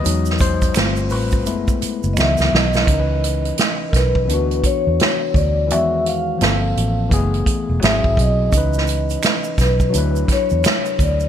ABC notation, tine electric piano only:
X:1
M:4/4
L:1/8
Q:"Swing 16ths" 1/4=85
K:C#m
V:1 name="Tine electric piano"
d ^B2 =B3 z2 | [E,CD^AB]4 [E,B,=DF]4 | [D,E,F,G,F]2 [=F,_B,=CA]2 [E,G,A,=B,G]2 [^F,^B,EG]2 | [D,E,CDB]4 [F,=DEB]4 |]
V:2 name="Tine electric piano"
[F,G,D]2 [=G,A,=C=F]2 [^G,A,B,E] z [D,E,^F,B,] z | z8 | z8 | z8 |]